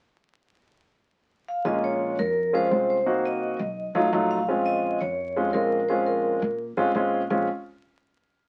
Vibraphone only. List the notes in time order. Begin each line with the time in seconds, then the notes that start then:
1.48 F5
1.66 D#5
1.84 C#5
2.19 A#4
2.55 C5
2.90 C5
3.25 D#5
4.31 F5
4.66 D#5
5.01 C#5
5.53 A#4
5.89 C5
6.06 A#4